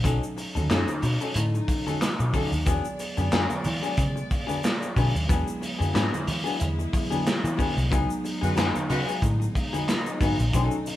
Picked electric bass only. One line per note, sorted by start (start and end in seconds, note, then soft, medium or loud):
0.04 0.18 B1 loud
0.56 0.67 D#2 medium
0.70 0.84 F#2 medium
1.03 1.17 B2 loud
1.36 1.60 A2 loud
2.20 2.30 B2 medium
2.52 2.63 D#2 medium
2.67 2.80 E2 loud
3.18 3.29 F#2 medium
3.33 3.46 F#2 medium
3.66 3.79 E3 loud
3.98 4.22 C#3 loud
4.97 5.10 B2 medium
5.15 5.25 D#2 medium
5.29 5.43 E2 loud
5.80 5.91 F#2 medium
5.95 6.09 G#2 medium
6.28 6.41 E3 medium
6.61 6.85 E2 loud
7.44 7.55 E3 loud
7.77 7.92 C2 medium
7.92 8.05 C#2 loud
8.43 8.53 F#2 medium
8.57 8.71 F#2 medium
8.90 9.04 C#3 medium
9.22 9.47 A2 loud
10.21 10.34 G#2 medium
10.39 10.50 A#1 medium
10.54 10.67 B1 medium